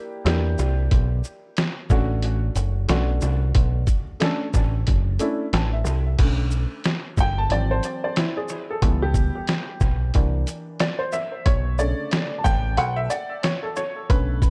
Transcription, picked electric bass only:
0.25 E2
0.59 C2
0.92 B1
1.90 A1
2.56 F#1
2.89 B1
3.22 C2
3.55 B1
4.54 A1
4.88 F#1
5.53 A1
5.86 C2
6.19 B1
7.17 G1
7.49 G#1
8.82 C#2
9.81 B1
10.15 C2
11.46 B1
12.45 A1
12.78 B1
14.10 B1

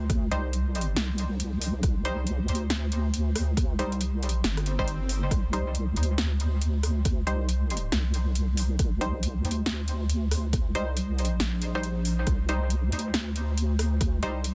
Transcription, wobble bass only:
Already playing: D2
0.32 C2
0.96 C2
1.83 C2
2.49 D2
3.79 C2
4.24 B1
4.44 G1
5.31 C2
5.96 D2
7.27 C2
7.92 C2
8.79 C2
9.44 D2
10.75 C2
11.20 B1
11.40 A#1
12.27 C2
12.92 D2
14.23 C2

